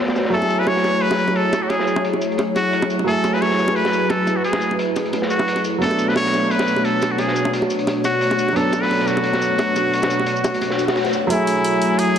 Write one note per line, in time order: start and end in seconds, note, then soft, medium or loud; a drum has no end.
0.00 0.28 F#3 medium
0.00 0.29 A3 medium
0.00 0.29 B3 medium
0.00 0.31 B3 medium
0.00 0.32 D4 medium
0.00 0.29 F#4 medium
0.00 0.33 A4 medium
0.00 0.29 C#5 medium
0.00 0.29 D5 medium
0.08 snare loud
0.08 open hi-hat medium
0.08 shaker soft
0.16 snare loud
0.16 open hi-hat medium
0.16 shaker medium
0.25 snare medium
0.25 open hi-hat medium
0.30 3.03 F#3 medium
0.30 5.78 F#3 medium
0.30 3.05 A3 medium
0.30 5.78 A3 medium
0.30 5.78 E4 medium
0.30 5.78 G#4 medium
0.30 0.61 A4 loud
0.30 3.05 C#5 medium
0.30 closed hi-hat medium
0.34 3.06 E4 medium
0.34 3.07 G#4 medium
0.42 high bongo soft
0.50 closed hi-hat medium
0.50 shaker medium
0.59 0.69 B4 medium
0.59 snare soft
0.67 1.03 C#5 loud
0.67 open hi-hat medium
0.67 high bongo medium
0.76 snare medium
0.84 snare soft
0.84 closed hi-hat medium
0.84 high bongo soft
0.84 shaker medium
1.01 1.38 B4 loud
1.01 closed hi-hat medium
1.11 snare soft
1.11 high bongo medium
1.19 closed hi-hat medium
1.19 shaker medium
1.28 high bongo medium
1.36 1.64 A4 medium
1.36 closed hi-hat medium
1.53 closed hi-hat medium
1.53 high bongo medium
1.53 shaker medium
1.62 1.72 F#4 medium
1.70 2.05 G#4 medium
1.70 closed hi-hat medium
1.70 high bongo medium
1.79 snare soft
1.87 closed hi-hat medium
1.87 shaker medium
1.96 high bongo medium
2.05 closed hi-hat medium
2.13 high bongo soft
2.22 closed hi-hat medium
2.22 shaker medium
2.32 closed hi-hat soft
2.38 closed hi-hat medium
2.38 high bongo medium
2.56 2.88 F#4 medium
2.56 closed hi-hat medium
2.56 high bongo medium
2.56 shaker medium
2.73 closed hi-hat medium
2.82 closed hi-hat soft
2.82 high bongo medium
2.90 closed hi-hat medium
2.90 shaker medium
2.99 high bongo medium
3.04 5.77 F#3 medium
3.04 5.79 A3 medium
3.04 3.35 A4 loud
3.04 5.79 B4 medium
3.04 closed hi-hat medium
3.09 5.80 E4 medium
3.09 5.81 G#4 medium
3.24 closed hi-hat medium
3.24 high bongo medium
3.24 shaker medium
3.33 3.43 B4 loud
3.33 snare soft
3.41 3.77 C#5 loud
3.41 open hi-hat medium
3.41 high bongo medium
3.51 snare soft
3.59 snare soft
3.59 closed hi-hat medium
3.59 shaker medium
3.68 high bongo medium
3.76 4.12 B4 loud
3.76 closed hi-hat medium
3.85 snare soft
3.85 high bongo soft
3.93 closed hi-hat medium
3.93 shaker medium
4.09 4.38 A4 medium
4.09 closed hi-hat medium
4.09 high bongo medium
4.27 closed hi-hat medium
4.27 high bongo medium
4.27 shaker medium
4.36 4.44 F#4 medium
4.44 4.76 G#4 medium
4.44 closed hi-hat medium
4.53 snare soft
4.53 high bongo medium
4.61 closed hi-hat medium
4.61 shaker medium
4.71 high bongo soft
4.79 closed hi-hat medium
4.96 closed hi-hat medium
4.96 high bongo medium
4.96 shaker medium
5.05 closed hi-hat soft
5.13 closed hi-hat medium
5.13 high bongo medium
5.22 snare medium
5.30 5.62 F#4 medium
5.30 closed hi-hat medium
5.30 shaker medium
5.39 high bongo medium
5.48 closed hi-hat medium
5.56 closed hi-hat soft
5.56 high bongo soft
5.65 closed hi-hat medium
5.65 shaker medium
5.78 11.26 B2 medium
5.78 8.51 F#3 medium
5.78 11.26 A3 medium
5.78 8.53 B3 medium
5.78 11.26 D4 medium
5.78 11.26 F#4 medium
5.78 6.10 A4 loud
5.78 11.26 C#5 medium
5.78 closed hi-hat medium
5.83 8.56 A3 medium
5.83 8.55 D4 medium
5.91 high bongo soft
5.98 closed hi-hat medium
5.98 shaker medium
6.08 6.16 B4 medium
6.08 snare soft
6.16 6.52 C#5 loud
6.16 open hi-hat medium
6.16 high bongo medium
6.26 snare medium
6.33 snare soft
6.33 closed hi-hat medium
6.33 high bongo soft
6.33 shaker medium
6.51 6.86 B4 medium
6.51 closed hi-hat medium
6.59 snare soft
6.59 high bongo medium
6.68 closed hi-hat medium
6.68 shaker medium
6.76 high bongo soft
6.85 7.13 A4 medium
6.85 closed hi-hat medium
7.02 closed hi-hat medium
7.02 high bongo medium
7.02 shaker medium
7.11 7.21 F#4 medium
7.18 7.53 G#4 medium
7.18 closed hi-hat medium
7.18 high bongo soft
7.28 snare soft
7.35 closed hi-hat medium
7.35 shaker medium
7.45 high bongo medium
7.53 closed hi-hat medium
7.62 high bongo soft
7.70 closed hi-hat medium
7.70 shaker medium
7.79 closed hi-hat soft
7.87 closed hi-hat medium
7.87 high bongo medium
8.04 8.58 F#4 medium
8.04 closed hi-hat medium
8.04 high bongo soft
8.04 shaker medium
8.21 closed hi-hat medium
8.30 closed hi-hat soft
8.30 high bongo medium
8.39 closed hi-hat medium
8.39 shaker medium
8.48 high bongo soft
8.53 11.26 F#3 medium
8.53 11.28 B3 medium
8.53 8.84 A4 loud
8.53 closed hi-hat medium
8.57 11.29 D4 medium
8.57 11.30 A4 medium
8.72 closed hi-hat medium
8.72 high bongo medium
8.72 shaker medium
8.82 9.09 B4 loud
8.82 snare soft
8.90 open hi-hat medium
8.90 high bongo soft
8.99 snare soft
9.07 10.96 F#4 medium
9.07 snare soft
9.07 closed hi-hat medium
9.07 shaker medium
9.17 high bongo medium
9.24 closed hi-hat medium
9.33 snare soft
9.33 high bongo soft
9.41 closed hi-hat medium
9.41 shaker medium
9.58 closed hi-hat medium
9.58 high bongo medium
9.76 closed hi-hat medium
9.76 high bongo medium
9.76 shaker medium
9.93 closed hi-hat medium
10.02 snare soft
10.02 high bongo medium
10.02 shaker soft
10.10 closed hi-hat medium
10.10 shaker medium
10.19 high bongo soft
10.26 closed hi-hat medium
10.36 shaker soft
10.44 closed hi-hat medium
10.44 high bongo medium
10.44 shaker medium
10.54 closed hi-hat soft
10.61 closed hi-hat medium
10.61 high bongo soft
10.61 swell medium
10.70 snare medium
10.79 closed hi-hat medium
10.79 shaker medium
10.88 snare soft
10.88 high bongo medium
10.96 snare loud
10.96 open hi-hat medium
11.04 snare loud
11.04 open hi-hat medium
11.04 high bongo soft
11.04 shaker soft
11.13 closed hi-hat medium
11.13 shaker medium
11.27 12.12 F#3 medium
11.27 12.19 F#3 medium
11.27 12.14 A3 medium
11.27 12.19 A3 medium
11.27 12.19 E4 medium
11.27 12.00 E4 medium
11.27 12.19 C#5 medium
11.27 12.19 G#5 medium
11.27 closed hi-hat medium
11.27 riser medium
11.31 12.15 E4 medium
11.31 12.16 G#4 loud
11.47 closed hi-hat medium
11.65 closed hi-hat medium
11.82 closed hi-hat medium
11.99 12.19 G#4 medium
11.99 closed hi-hat medium